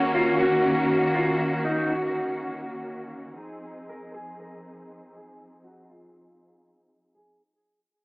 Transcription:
Already playing: string section D#3 A#3 C#4 F#4, clean electric guitar F#4
0.15 clean electric guitar F4
0.40 clean electric guitar F#4
1.15 clean electric guitar F4
1.65 clean electric guitar D#4
1.90 clean electric guitar F#4
3.39 string section F3 C4 D#4 G#4
3.89 clean electric guitar A#4
4.14 clean electric guitar G#4
4.40 clean electric guitar A#4
5.15 clean electric guitar G#4
5.64 clean electric guitar F#4
5.90 clean electric guitar F4
7.15 clean electric guitar G#4

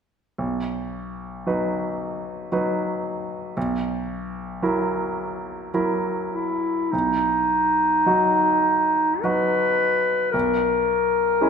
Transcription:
0.38 grand piano B1
1.47 grand piano F#3 D#4 B4
2.52 grand piano F#3 D#4 B4
3.57 grand piano B1
4.62 grand piano F#3 E4 A#4
5.74 grand piano F#3 E4 A#4
6.33 clarinet E4
6.91 grand piano B1, clarinet D#4
8.06 grand piano F#3 D#4 F#4
9.22 grand piano F#3 D#4 F#4, clarinet B4
10.31 grand piano B1, clarinet A#4
11.41 grand piano G#3 C#4 E4

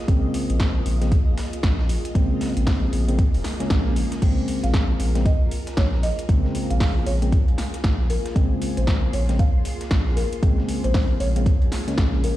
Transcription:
Already playing: string machine A#3 F4 G#4 D#5
0.08 analog synth bass A#1, synth stab C#3 G#3 A#3 C4, kick, closed hi-hat
0.34 closed hi-hat, open hi-hat
0.50 analog synth bass A#1, closed hi-hat
0.60 kick, snare, closed hi-hat
0.86 analog synth bass A#1, closed hi-hat, open hi-hat
1.01 synth stab C#3 G#3 A#3 C4, snare, closed hi-hat
1.12 kick, closed hi-hat
1.27 analog synth bass A#1
1.38 snare, closed hi-hat, open hi-hat
1.53 closed hi-hat
1.63 analog synth bass A#1, kick, snare, closed hi-hat
1.79 snare
1.89 closed hi-hat, open hi-hat
2.05 closed hi-hat
2.15 analog synth bass A#1, synth stab C#3 G#3 A#3 C4, kick, closed hi-hat
2.41 snare, closed hi-hat, open hi-hat
2.57 analog synth bass A#1, closed hi-hat
2.67 kick, snare, closed hi-hat, open hi-hat
2.93 analog synth bass A#1, closed hi-hat, open hi-hat
3.08 synth stab C#3 G#3 A#3 C4, closed hi-hat
3.19 kick, closed hi-hat, swell
3.34 analog synth bass F1, closed hi-hat, open hi-hat
3.44 snare, closed hi-hat, open hi-hat
3.60 synth stab C#3 G#3 A#3 C#4, snare, closed hi-hat
3.70 analog synth bass A#1, kick, snare, closed hi-hat
3.86 snare
3.96 closed hi-hat, open hi-hat
4.12 snare, closed hi-hat
4.22 analog synth bass A#1, synth stab C#3 G#3 A#3 C4, string machine A#4, kick, closed hi-hat, crash
4.48 closed hi-hat, open hi-hat
4.64 analog synth bass A#1, marimba F5, closed hi-hat
4.74 kick, snare, closed hi-hat
5.00 analog synth bass A#1, closed hi-hat, open hi-hat
5.15 synth stab C#3 G#3 A#3 C4, snare, closed hi-hat
5.25 marimba D#5, kick, closed hi-hat
5.41 analog synth bass A#1
5.51 closed hi-hat, open hi-hat
5.67 snare, closed hi-hat
5.77 analog synth bass A#1, marimba C#5, kick, snare, closed hi-hat
5.93 snare
6.03 marimba D#5, snare, closed hi-hat, open hi-hat
6.19 closed hi-hat
6.29 analog synth bass A#1, synth stab C#3 G#3 A#3 C4, kick, closed hi-hat
6.45 snare
6.55 closed hi-hat, open hi-hat
6.70 analog synth bass A#1, marimba F5, closed hi-hat
6.80 marimba F5, kick, snare, closed hi-hat, open hi-hat
7.06 analog synth bass A#1, marimba C#5, closed hi-hat, open hi-hat
7.22 synth stab C#3 G#3 A#3 C4, closed hi-hat
7.32 kick, closed hi-hat
7.48 analog synth bass A#1, closed hi-hat
7.58 snare, closed hi-hat, open hi-hat
7.74 snare, closed hi-hat
7.84 analog synth bass A#1, kick, snare, closed hi-hat
8.00 snare
8.10 marimba A#4, closed hi-hat, open hi-hat
8.26 snare, closed hi-hat
8.36 analog synth bass A#1, synth stab C#3 G#3 A#3 C4, string machine C6, kick, closed hi-hat
8.62 closed hi-hat, open hi-hat
8.77 analog synth bass A#1, marimba C5, closed hi-hat
8.87 kick, snare, closed hi-hat
9.13 analog synth bass A#1, marimba C#5, closed hi-hat, open hi-hat
9.29 synth stab C#3 G#3 A#3 C4, snare, closed hi-hat
9.39 marimba F5, kick, closed hi-hat
9.55 analog synth bass A#1
9.65 closed hi-hat, open hi-hat
9.81 snare, closed hi-hat
9.91 analog synth bass A#1, kick, snare, closed hi-hat
10.07 snare
10.16 marimba A#4, snare, closed hi-hat, open hi-hat
10.33 closed hi-hat
10.43 analog synth bass A#1, synth stab C#3 G#3 A#3 C4, kick, closed hi-hat
10.58 snare
10.68 closed hi-hat, open hi-hat
10.84 analog synth bass A#1, marimba C5, closed hi-hat
10.94 kick, snare, closed hi-hat, open hi-hat
11.20 analog synth bass A#1, marimba C#5, closed hi-hat, open hi-hat
11.36 synth stab C#3 G#3 A#3 C4, closed hi-hat
11.46 kick, closed hi-hat
11.62 analog synth bass A#1, closed hi-hat
11.72 snare, closed hi-hat, open hi-hat
11.88 synth stab C#3 G#3 A#3 C#4, snare, closed hi-hat
11.98 analog synth bass A#1, kick, snare, closed hi-hat
12.13 snare
12.24 marimba A#4, closed hi-hat, open hi-hat

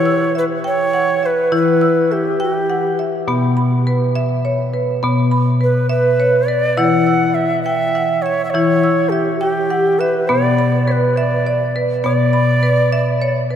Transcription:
Already playing: marimba E3 E4, native american-style wooden flute C#5
0.06 marimba E6
0.35 native american-style wooden flute B4, marimba E5
0.64 native american-style wooden flute C#5, marimba G5
0.94 marimba F#5
1.23 native american-style wooden flute B4, marimba E5
1.52 marimba E3 E4, native american-style wooden flute B4
1.81 marimba E6
2.11 native american-style wooden flute G4, marimba E5
2.40 native american-style wooden flute F#4, marimba G5
2.54 native american-style wooden flute G4
2.70 marimba F#5
2.99 marimba E5
3.28 marimba B2 B3
3.57 marimba B5
3.87 marimba B4
4.15 marimba E5
4.45 marimba C#5
4.74 marimba B4
5.03 marimba B2 B3
5.31 marimba B5
5.61 marimba B4, native american-style wooden flute B4
5.89 native american-style wooden flute B4, marimba E5
6.20 marimba C#5
6.47 marimba B4, native american-style wooden flute D5
6.77 marimba E3 E4, native american-style wooden flute F#5
7.07 marimba E6
7.34 native american-style wooden flute E5
7.63 native american-style wooden flute E5, marimba G5
7.95 marimba F#5
8.22 native american-style wooden flute C#5, marimba E5
8.45 native american-style wooden flute E5
8.51 marimba E3, native american-style wooden flute C#5
8.55 marimba E4
8.84 marimba E6
9.09 native american-style wooden flute G4, marimba E5
9.40 native american-style wooden flute G4, marimba G5
9.70 marimba F#5
9.99 native american-style wooden flute B4, marimba E5
10.28 marimba B2 B3, native american-style wooden flute D5
10.58 marimba B5
10.87 marimba B4, native american-style wooden flute C#5
10.92 native american-style wooden flute B4
11.16 native american-style wooden flute D5, marimba E5
11.47 marimba D5
11.76 marimba B4
12.04 marimba B2 B3, native american-style wooden flute D5
12.33 marimba B5
12.63 marimba B4
12.93 marimba E5
13.22 marimba C#5
13.51 marimba B4

